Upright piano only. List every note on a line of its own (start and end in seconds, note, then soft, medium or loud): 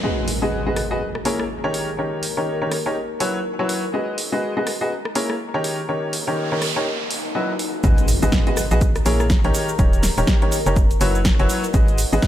0.03 0.27 G#3 medium
0.03 0.27 F#4 medium
0.03 0.27 G#4 medium
0.03 0.27 B4 medium
0.03 0.27 D#5 medium
0.42 0.62 G#3 medium
0.42 0.62 F#4 medium
0.42 0.62 G#4 medium
0.42 0.62 B4 medium
0.42 0.62 D#5 medium
0.66 0.80 G#3 medium
0.66 0.80 F#4 medium
0.66 0.80 G#4 medium
0.66 0.80 B4 medium
0.66 0.80 D#5 medium
0.91 1.00 F#4 medium
0.91 1.00 G#4 medium
0.91 1.00 B4 medium
0.91 1.00 D#5 medium
1.25 1.42 A#3 medium
1.25 1.42 E4 medium
1.25 1.42 G#4 medium
1.25 1.42 A#4 medium
1.25 1.42 C#5 medium
1.64 1.87 D#3 medium
1.64 1.87 D#4 medium
1.64 1.87 G4 medium
1.64 1.87 A#4 medium
1.64 1.87 C#5 medium
1.98 2.22 D#3 medium
1.98 2.22 D#4 medium
1.98 2.22 G4 medium
1.98 2.22 A#4 medium
1.98 2.22 C#5 medium
2.37 2.57 D#3 medium
2.37 2.57 D#4 medium
2.37 2.57 G4 medium
2.37 2.57 A#4 medium
2.37 2.57 C#5 medium
2.62 2.75 D#3 medium
2.62 2.75 D#4 medium
2.62 2.75 G4 medium
2.62 2.75 A#4 medium
2.62 2.75 C#5 medium
2.86 2.95 D#4 medium
2.86 2.95 G4 medium
2.86 2.95 A#4 medium
2.86 2.95 C#5 medium
3.20 3.37 F#3 medium
3.20 3.37 E4 medium
3.20 3.37 F#4 medium
3.20 3.37 B4 medium
3.20 3.37 C#5 loud
3.59 3.83 F#3 medium
3.59 3.83 E4 medium
3.59 3.83 F#4 medium
3.59 3.83 B4 medium
3.59 3.83 C#5 medium
3.94 4.17 G#3 medium
3.94 4.17 F#4 medium
3.94 4.17 G#4 medium
3.94 4.17 B4 medium
3.94 4.17 D#5 medium
4.32 4.52 G#3 medium
4.32 4.52 F#4 medium
4.32 4.52 G#4 medium
4.32 4.52 B4 medium
4.32 4.52 D#5 medium
4.57 4.70 G#3 medium
4.57 4.70 F#4 medium
4.57 4.70 G#4 medium
4.57 4.70 B4 medium
4.57 4.70 D#5 medium
4.81 4.90 F#4 medium
4.81 4.90 G#4 medium
4.81 4.90 B4 medium
4.81 4.90 D#5 medium
5.15 5.32 A#3 medium
5.15 5.32 E4 medium
5.15 5.32 G#4 medium
5.15 5.32 A#4 medium
5.15 5.32 C#5 loud
5.54 5.78 D#3 medium
5.54 5.78 D#4 medium
5.54 5.78 G4 medium
5.54 5.78 A#4 medium
5.54 5.78 C#5 loud
5.89 6.12 D#3 medium
5.89 6.12 D#4 medium
5.89 6.12 G4 medium
5.89 6.12 A#4 medium
5.89 6.12 C#5 medium
6.27 6.48 D#3 medium
6.27 6.48 D#4 medium
6.27 6.48 G4 medium
6.27 6.48 A#4 medium
6.27 6.48 C#5 medium
6.52 6.65 D#3 medium
6.52 6.65 D#4 medium
6.52 6.65 G4 medium
6.52 6.65 A#4 medium
6.52 6.65 C#5 medium
6.76 6.85 D#4 medium
6.76 6.85 G4 medium
6.76 6.85 A#4 medium
6.76 6.85 C#5 medium
7.35 7.51 F#3 medium
7.35 7.51 E4 medium
7.35 7.51 F#4 medium
7.35 7.51 B4 medium
7.35 7.51 D#5 medium
7.84 8.08 G#3 medium
7.84 8.08 F#4 medium
7.84 8.08 G#4 medium
7.84 8.08 B4 medium
7.84 8.08 D#5 medium
8.22 8.43 G#3 medium
8.22 8.43 F#4 medium
8.22 8.43 G#4 medium
8.22 8.43 B4 medium
8.22 8.43 D#5 medium
8.47 8.60 G#3 medium
8.47 8.60 F#4 medium
8.47 8.60 G#4 medium
8.47 8.60 B4 medium
8.47 8.60 D#5 medium
8.71 8.80 F#4 medium
8.71 8.80 G#4 medium
8.71 8.80 B4 medium
8.71 8.80 D#5 loud
9.06 9.22 A#3 loud
9.06 9.22 E4 medium
9.06 9.22 G#4 medium
9.06 9.22 A#4 medium
9.06 9.22 C#5 loud
9.44 9.68 D#3 loud
9.44 9.68 D#4 medium
9.44 9.68 G4 medium
9.44 9.68 A#4 medium
9.44 9.68 C#5 loud
9.79 10.03 D#3 medium
9.79 10.03 D#4 medium
9.79 10.03 G4 medium
9.79 10.03 A#4 medium
9.79 10.03 C#5 medium
10.18 10.38 D#3 medium
10.18 10.38 D#4 medium
10.18 10.38 G4 medium
10.18 10.38 A#4 medium
10.18 10.38 C#5 medium
10.42 10.55 D#3 medium
10.42 10.55 D#4 medium
10.42 10.55 G4 medium
10.42 10.55 A#4 medium
10.42 10.55 C#5 medium
10.66 10.75 D#4 medium
10.66 10.75 G4 medium
10.66 10.75 A#4 medium
10.66 10.75 C#5 loud
11.01 11.17 F#3 loud
11.01 11.17 E4 medium
11.01 11.17 F#4 medium
11.01 11.17 B4 medium
11.01 11.17 C#5 loud
11.39 11.63 F#3 medium
11.39 11.63 E4 medium
11.39 11.63 F#4 medium
11.39 11.63 B4 medium
11.39 11.63 C#5 loud
11.74 11.98 G#3 medium
11.74 11.98 F#4 medium
11.74 11.98 G#4 medium
11.74 11.98 B4 medium
11.74 11.98 D#5 medium
12.13 12.27 G#3 medium
12.13 12.27 F#4 medium
12.13 12.27 G#4 medium
12.13 12.27 B4 medium
12.13 12.27 D#5 medium